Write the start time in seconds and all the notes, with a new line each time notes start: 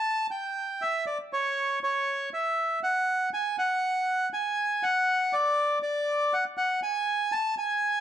Already playing: A5
0.31 G5
0.82 E5
1.06 D5
1.33 C#5
1.83 C#5
2.34 E5
2.83 F#5
3.34 G#5
3.59 F#5
4.33 G#5
4.83 F#5
5.33 D5
5.83 D5
6.33 F#5
6.57 F#5
6.83 G#5
7.32 A5
7.58 G#5